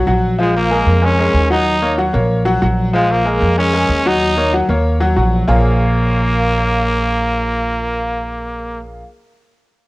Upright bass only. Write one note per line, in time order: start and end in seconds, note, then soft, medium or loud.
0.07 0.81 A#1 medium
0.86 1.31 F2 loud
1.34 2.08 D#2 medium
2.14 2.58 A#1 loud
2.62 3.36 A#1 medium
3.42 3.86 F2 loud
3.89 4.63 D#2 medium
4.69 5.13 D#2 loud
5.16 5.45 A#1 medium
5.48 9.01 A#1 loud